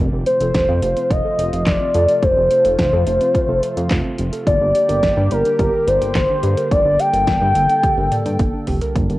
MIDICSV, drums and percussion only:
0, 0, Header, 1, 2, 480
1, 0, Start_track
1, 0, Key_signature, -2, "minor"
1, 0, Tempo, 560748
1, 1905, Time_signature, 4, 2, 24, 8
1, 7866, End_track
2, 0, Start_track
2, 0, Title_t, "Drums"
2, 225, Note_on_c, 9, 42, 79
2, 311, Note_off_c, 9, 42, 0
2, 346, Note_on_c, 9, 42, 52
2, 431, Note_off_c, 9, 42, 0
2, 465, Note_on_c, 9, 36, 109
2, 465, Note_on_c, 9, 42, 77
2, 467, Note_on_c, 9, 38, 113
2, 550, Note_off_c, 9, 36, 0
2, 550, Note_off_c, 9, 42, 0
2, 553, Note_off_c, 9, 38, 0
2, 704, Note_on_c, 9, 42, 77
2, 789, Note_off_c, 9, 42, 0
2, 826, Note_on_c, 9, 42, 44
2, 911, Note_off_c, 9, 42, 0
2, 945, Note_on_c, 9, 36, 107
2, 946, Note_on_c, 9, 42, 73
2, 1031, Note_off_c, 9, 36, 0
2, 1031, Note_off_c, 9, 42, 0
2, 1188, Note_on_c, 9, 42, 82
2, 1273, Note_off_c, 9, 42, 0
2, 1309, Note_on_c, 9, 42, 55
2, 1395, Note_off_c, 9, 42, 0
2, 1425, Note_on_c, 9, 38, 114
2, 1425, Note_on_c, 9, 39, 96
2, 1425, Note_on_c, 9, 42, 78
2, 1426, Note_on_c, 9, 36, 120
2, 1511, Note_off_c, 9, 36, 0
2, 1511, Note_off_c, 9, 38, 0
2, 1511, Note_off_c, 9, 39, 0
2, 1511, Note_off_c, 9, 42, 0
2, 1663, Note_on_c, 9, 42, 73
2, 1749, Note_off_c, 9, 42, 0
2, 1784, Note_on_c, 9, 42, 59
2, 1870, Note_off_c, 9, 42, 0
2, 1905, Note_on_c, 9, 36, 122
2, 1905, Note_on_c, 9, 42, 77
2, 1991, Note_off_c, 9, 36, 0
2, 1991, Note_off_c, 9, 42, 0
2, 2145, Note_on_c, 9, 42, 81
2, 2231, Note_off_c, 9, 42, 0
2, 2266, Note_on_c, 9, 42, 54
2, 2352, Note_off_c, 9, 42, 0
2, 2385, Note_on_c, 9, 36, 107
2, 2385, Note_on_c, 9, 42, 78
2, 2388, Note_on_c, 9, 38, 113
2, 2471, Note_off_c, 9, 36, 0
2, 2471, Note_off_c, 9, 42, 0
2, 2474, Note_off_c, 9, 38, 0
2, 2624, Note_on_c, 9, 42, 74
2, 2710, Note_off_c, 9, 42, 0
2, 2746, Note_on_c, 9, 42, 45
2, 2831, Note_off_c, 9, 42, 0
2, 2865, Note_on_c, 9, 36, 102
2, 2866, Note_on_c, 9, 42, 73
2, 2950, Note_off_c, 9, 36, 0
2, 2951, Note_off_c, 9, 42, 0
2, 3108, Note_on_c, 9, 42, 81
2, 3193, Note_off_c, 9, 42, 0
2, 3229, Note_on_c, 9, 42, 55
2, 3315, Note_off_c, 9, 42, 0
2, 3346, Note_on_c, 9, 36, 120
2, 3346, Note_on_c, 9, 38, 117
2, 3346, Note_on_c, 9, 39, 100
2, 3346, Note_on_c, 9, 42, 75
2, 3431, Note_off_c, 9, 38, 0
2, 3431, Note_off_c, 9, 39, 0
2, 3431, Note_off_c, 9, 42, 0
2, 3432, Note_off_c, 9, 36, 0
2, 3583, Note_on_c, 9, 42, 74
2, 3669, Note_off_c, 9, 42, 0
2, 3706, Note_on_c, 9, 42, 60
2, 3792, Note_off_c, 9, 42, 0
2, 3826, Note_on_c, 9, 36, 120
2, 3827, Note_on_c, 9, 42, 77
2, 3911, Note_off_c, 9, 36, 0
2, 3913, Note_off_c, 9, 42, 0
2, 4066, Note_on_c, 9, 42, 83
2, 4152, Note_off_c, 9, 42, 0
2, 4187, Note_on_c, 9, 42, 54
2, 4273, Note_off_c, 9, 42, 0
2, 4305, Note_on_c, 9, 36, 109
2, 4306, Note_on_c, 9, 42, 81
2, 4309, Note_on_c, 9, 38, 116
2, 4391, Note_off_c, 9, 36, 0
2, 4392, Note_off_c, 9, 42, 0
2, 4395, Note_off_c, 9, 38, 0
2, 4544, Note_on_c, 9, 42, 75
2, 4630, Note_off_c, 9, 42, 0
2, 4666, Note_on_c, 9, 42, 46
2, 4752, Note_off_c, 9, 42, 0
2, 4785, Note_on_c, 9, 36, 107
2, 4785, Note_on_c, 9, 42, 71
2, 4871, Note_off_c, 9, 36, 0
2, 4871, Note_off_c, 9, 42, 0
2, 5028, Note_on_c, 9, 42, 83
2, 5113, Note_off_c, 9, 42, 0
2, 5149, Note_on_c, 9, 42, 54
2, 5235, Note_off_c, 9, 42, 0
2, 5265, Note_on_c, 9, 42, 75
2, 5266, Note_on_c, 9, 36, 118
2, 5266, Note_on_c, 9, 38, 119
2, 5266, Note_on_c, 9, 39, 93
2, 5351, Note_off_c, 9, 38, 0
2, 5351, Note_off_c, 9, 39, 0
2, 5351, Note_off_c, 9, 42, 0
2, 5352, Note_off_c, 9, 36, 0
2, 5503, Note_on_c, 9, 42, 73
2, 5589, Note_off_c, 9, 42, 0
2, 5626, Note_on_c, 9, 42, 58
2, 5712, Note_off_c, 9, 42, 0
2, 5746, Note_on_c, 9, 36, 124
2, 5746, Note_on_c, 9, 42, 78
2, 5831, Note_off_c, 9, 36, 0
2, 5832, Note_off_c, 9, 42, 0
2, 5986, Note_on_c, 9, 42, 82
2, 6072, Note_off_c, 9, 42, 0
2, 6107, Note_on_c, 9, 42, 53
2, 6192, Note_off_c, 9, 42, 0
2, 6225, Note_on_c, 9, 36, 108
2, 6225, Note_on_c, 9, 42, 80
2, 6228, Note_on_c, 9, 38, 118
2, 6311, Note_off_c, 9, 36, 0
2, 6311, Note_off_c, 9, 42, 0
2, 6314, Note_off_c, 9, 38, 0
2, 6464, Note_on_c, 9, 42, 78
2, 6550, Note_off_c, 9, 42, 0
2, 6586, Note_on_c, 9, 42, 45
2, 6672, Note_off_c, 9, 42, 0
2, 6705, Note_on_c, 9, 36, 103
2, 6705, Note_on_c, 9, 42, 71
2, 6706, Note_on_c, 9, 48, 59
2, 6791, Note_off_c, 9, 36, 0
2, 6791, Note_off_c, 9, 42, 0
2, 6791, Note_off_c, 9, 48, 0
2, 6826, Note_on_c, 9, 48, 57
2, 6912, Note_off_c, 9, 48, 0
2, 6947, Note_on_c, 9, 47, 73
2, 6948, Note_on_c, 9, 42, 83
2, 7032, Note_off_c, 9, 47, 0
2, 7034, Note_off_c, 9, 42, 0
2, 7069, Note_on_c, 9, 42, 54
2, 7155, Note_off_c, 9, 42, 0
2, 7186, Note_on_c, 9, 36, 122
2, 7186, Note_on_c, 9, 42, 76
2, 7271, Note_off_c, 9, 42, 0
2, 7272, Note_off_c, 9, 36, 0
2, 7424, Note_on_c, 9, 46, 73
2, 7426, Note_on_c, 9, 43, 100
2, 7509, Note_off_c, 9, 46, 0
2, 7512, Note_off_c, 9, 43, 0
2, 7546, Note_on_c, 9, 42, 57
2, 7547, Note_on_c, 9, 43, 92
2, 7631, Note_off_c, 9, 42, 0
2, 7632, Note_off_c, 9, 43, 0
2, 7666, Note_on_c, 9, 36, 120
2, 7667, Note_on_c, 9, 42, 77
2, 7752, Note_off_c, 9, 36, 0
2, 7752, Note_off_c, 9, 42, 0
2, 7787, Note_on_c, 9, 42, 44
2, 7866, Note_off_c, 9, 42, 0
2, 7866, End_track
0, 0, End_of_file